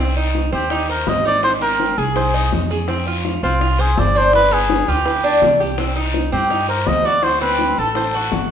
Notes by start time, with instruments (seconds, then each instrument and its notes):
Already playing: upright bass C2
0.00 cuban tres C4
0.16 cuban tres D#4, high bongo
0.35 high bongo, short guiro
0.52 upright bass D#2, cuban tres C4, muted trumpet G4, high bongo, short guiro
0.70 cuban tres D#4, high bongo, long guiro
0.90 muted trumpet A#4, cuban tres C5
1.07 upright bass G#1, muted trumpet D#5, high bongo, low bongo, short guiro
1.25 cuban tres D#4, muted trumpet D5, high bongo, short guiro
1.43 muted trumpet C5, high bongo, long guiro
1.61 cuban tres C4, muted trumpet A#4, high bongo
1.80 high bongo, short guiro
1.98 upright bass C2, cuban tres G#4, muted trumpet G#4, high bongo, short guiro
2.16 cuban tres C5, high bongo, long guiro
2.34 cuban tres D#4
2.52 upright bass F2, high bongo, low bongo, short guiro
2.70 cuban tres G#4, high bongo, short guiro
2.88 cuban tres C4, high bongo, long guiro
3.07 cuban tres F4, high bongo
3.25 high bongo, short guiro
3.43 upright bass C2, cuban tres C4, muted trumpet F4, high bongo, short guiro
3.61 cuban tres F4, high bongo, long guiro
3.79 muted trumpet G#4, cuban tres C5
3.97 upright bass G1, muted trumpet D5, high bongo, low bongo, short guiro
4.15 cuban tres D4, muted trumpet C5, high bongo, short guiro
4.33 muted trumpet B4, high bongo, long guiro
4.51 cuban tres B3, muted trumpet G#4, high bongo
4.70 high bongo, short guiro
4.87 upright bass D2, cuban tres F4, muted trumpet G4, high bongo, short guiro
5.06 cuban tres B4, high bongo, long guiro
5.24 cuban tres D4
5.42 upright bass C2, high bongo, low bongo, short guiro
5.60 cuban tres G4, high bongo, short guiro
5.78 cuban tres C4, high bongo, long guiro
5.96 cuban tres D#4, high bongo
6.14 high bongo, short guiro
6.32 upright bass G2, cuban tres C4, muted trumpet G4, high bongo, short guiro
6.50 cuban tres D#4, high bongo, long guiro
6.69 muted trumpet A#4, cuban tres C5
6.87 upright bass D2, muted trumpet D#5, high bongo, low bongo, short guiro
7.05 cuban tres F#4, muted trumpet D5, high bongo, short guiro
7.23 muted trumpet C5, high bongo, long guiro
7.41 cuban tres C4, muted trumpet B4, high bongo
7.59 high bongo, short guiro
7.77 upright bass A1, cuban tres A4, muted trumpet A4, high bongo, short guiro
7.95 cuban tres C5, high bongo, long guiro
8.14 cuban tres F#4
8.32 upright bass G1, high bongo, low bongo, short guiro